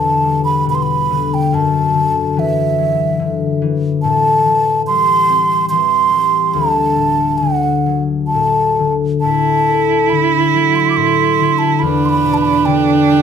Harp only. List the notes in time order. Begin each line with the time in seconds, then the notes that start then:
Already playing: E2 D3 E5
0.23 G3
0.66 B2
1.10 D3
1.52 F#2
1.94 D3
2.37 E3
2.78 F#3
3.19 D3
3.62 E3
4.04 A2
4.45 E3
4.89 G3
5.29 C4
5.71 E3
6.12 G3
6.54 D2
6.96 A2
7.41 D3
7.86 F#3
8.34 A2
8.79 D3
9.24 A2
9.68 A4
10.12 D3
10.54 F#3
10.97 A2
11.39 D3
11.81 E2
12.24 B2
12.66 D3
13.07 G3